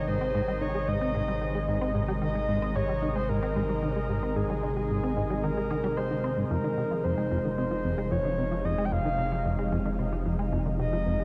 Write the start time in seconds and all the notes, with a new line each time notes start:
Already playing: G#1 C3 D#3 G#3 D#4 D#5
0.08 G#2 C5
0.21 C4
0.35 G#2
0.48 G3
0.61 D#3 C#5
0.75 G#3
0.88 G#2 D#5
1.01 C4
1.15 G#2
1.28 G3
1.41 D#3
1.55 G#3
1.68 G#2
1.81 C4
1.95 G#2
2.08 G3
2.22 D#3 D#5
2.35 G#3
2.48 G#2
2.62 C4
2.76 G#2 C#5
2.89 G3
3.02 D#3
3.16 G#3 C5
3.29 G#2 A#4
3.43 C4
3.56 G#2
3.69 G3
3.83 D#3
3.96 G#3
4.09 G#2
4.23 C4
4.36 G#2 G#4
4.50 G3
4.63 D#3
4.77 G#3
4.90 G#2
5.04 C4
5.17 G#2
5.30 G3
5.43 D#3 A#4
5.57 G#3
5.71 D#3
5.84 G3
5.97 G#3 C5
6.11 D#3
6.24 C4
6.37 G#2
6.50 F1 F2 F3 A#4
6.64 D#3
6.78 C3
6.91 F3
7.04 F2 C5
7.18 G#3
7.31 F2
7.45 D#3
7.57 C3 C5
7.71 F3
7.84 F2
7.98 G#3
8.11 F2 C#5
8.25 D#3
8.38 C3
8.51 F3
8.65 F2 D#5
8.78 G#3
8.85 G5
8.92 F2 F5
9.05 D#3
9.18 C3
9.32 F3
9.45 F2
9.59 G#3
9.72 F2
9.85 D#3
9.99 C3
10.12 F3
10.26 F2
10.39 G#3
10.52 F2
10.66 D#3
10.79 C3 D#5
10.93 F3
11.06 F2
11.20 G#3